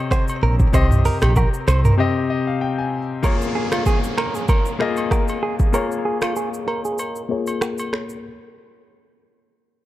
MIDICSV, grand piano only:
0, 0, Header, 1, 2, 480
1, 0, Start_track
1, 0, Tempo, 625000
1, 566, Time_signature, 4, 2, 24, 8
1, 7566, End_track
2, 0, Start_track
2, 0, Title_t, "Grand piano"
2, 0, Program_c, 0, 0
2, 0, Control_c, 0, 64, 127
2, 0, Note_on_c, 0, 48, 92
2, 0, Note_on_c, 0, 60, 82
2, 0, Note_on_c, 0, 67, 80
2, 0, Note_on_c, 0, 73, 78
2, 0, Note_on_c, 0, 75, 101
2, 371, Note_off_c, 0, 48, 0
2, 374, Note_off_c, 0, 60, 0
2, 378, Note_off_c, 0, 67, 0
2, 406, Note_off_c, 0, 75, 0
2, 557, Note_on_c, 0, 48, 87
2, 564, Note_on_c, 0, 60, 77
2, 570, Note_on_c, 0, 67, 81
2, 577, Note_on_c, 0, 75, 96
2, 1331, Note_off_c, 0, 48, 0
2, 1335, Note_off_c, 0, 60, 0
2, 1338, Note_off_c, 0, 67, 0
2, 1341, Note_off_c, 0, 75, 0
2, 1517, Note_on_c, 0, 48, 88
2, 1523, Note_on_c, 0, 60, 84
2, 1529, Note_on_c, 0, 67, 82
2, 1536, Note_on_c, 0, 75, 93
2, 1754, Note_off_c, 0, 75, 0
2, 1766, Note_on_c, 0, 75, 76
2, 1889, Note_off_c, 0, 75, 0
2, 1898, Note_on_c, 0, 77, 72
2, 1998, Note_off_c, 0, 77, 0
2, 2006, Note_on_c, 0, 79, 73
2, 2129, Note_off_c, 0, 79, 0
2, 2138, Note_on_c, 0, 80, 72
2, 2291, Note_off_c, 0, 48, 0
2, 2294, Note_off_c, 0, 60, 0
2, 2297, Note_off_c, 0, 67, 0
2, 2462, Note_off_c, 0, 80, 0
2, 2477, Note_on_c, 0, 58, 85
2, 2484, Note_on_c, 0, 65, 77
2, 2490, Note_on_c, 0, 68, 73
2, 2496, Note_off_c, 0, 73, 0
2, 2496, Control_c, 0, 64, 0
2, 2496, Note_on_c, 0, 73, 90
2, 2643, Control_c, 0, 64, 127
2, 3251, Note_off_c, 0, 58, 0
2, 3255, Note_off_c, 0, 65, 0
2, 3258, Note_off_c, 0, 68, 0
2, 3261, Note_off_c, 0, 73, 0
2, 3677, Note_on_c, 0, 58, 84
2, 3683, Note_on_c, 0, 65, 78
2, 3689, Note_on_c, 0, 68, 77
2, 3696, Note_on_c, 0, 75, 89
2, 4265, Note_off_c, 0, 58, 0
2, 4268, Note_off_c, 0, 65, 0
2, 4271, Note_off_c, 0, 68, 0
2, 4274, Note_off_c, 0, 75, 0
2, 4397, Note_on_c, 0, 58, 83
2, 4403, Note_on_c, 0, 65, 72
2, 4409, Note_on_c, 0, 68, 78
2, 4416, Note_on_c, 0, 73, 90
2, 5171, Note_off_c, 0, 58, 0
2, 5174, Note_off_c, 0, 65, 0
2, 5177, Note_off_c, 0, 68, 0
2, 5181, Note_off_c, 0, 73, 0
2, 5596, Note_on_c, 0, 58, 81
2, 5603, Note_on_c, 0, 65, 72
2, 5609, Note_on_c, 0, 68, 77
2, 5615, Note_on_c, 0, 73, 91
2, 6184, Note_off_c, 0, 58, 0
2, 6188, Note_off_c, 0, 65, 0
2, 6191, Note_off_c, 0, 68, 0
2, 6194, Note_off_c, 0, 73, 0
2, 6337, Control_c, 0, 64, 0
2, 7566, End_track
0, 0, End_of_file